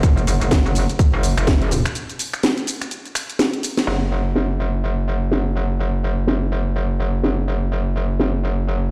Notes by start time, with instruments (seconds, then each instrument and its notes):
0.03 wobble bass F#1, kick, closed hi-hat, shaker
0.17 closed hi-hat, shaker
0.27 wobble bass F#1, open hi-hat, shaker
0.41 wobble bass F#1, closed hi-hat, shaker
0.51 kick, snare, closed hi-hat, shaker
0.65 wobble bass F#1, shaker
0.75 open hi-hat, shaker
0.90 closed hi-hat, shaker
0.99 kick, closed hi-hat, shaker
1.13 wobble bass F#1
1.23 open hi-hat, shaker
1.37 wobble bass F#1, finger snap, closed hi-hat, shaker
1.47 kick, snare, closed hi-hat, shaker
1.62 closed hi-hat
1.71 open hi-hat, shaker
1.85 finger snap, closed hi-hat, shaker
1.95 closed hi-hat, shaker
2.10 closed hi-hat, shaker
2.19 open hi-hat, shaker
2.33 finger snap, closed hi-hat, shaker
2.43 snare, closed hi-hat, shaker
2.58 closed hi-hat, shaker
2.67 open hi-hat, shaker
2.82 finger snap, closed hi-hat, shaker
2.91 closed hi-hat, shaker
3.05 closed hi-hat, shaker
3.15 finger snap, open hi-hat, shaker
3.29 closed hi-hat, shaker
3.39 snare, closed hi-hat, shaker
3.53 closed hi-hat
3.63 open hi-hat, shaker
3.77 snare, closed hi-hat, shaker
3.87 wobble bass F#1, shaker
4.12 shaker
4.26 shaker
4.36 snare
4.50 shaker
4.74 shaker
5.32 snare
5.56 shaker
6.28 snare
7.24 snare
8.20 snare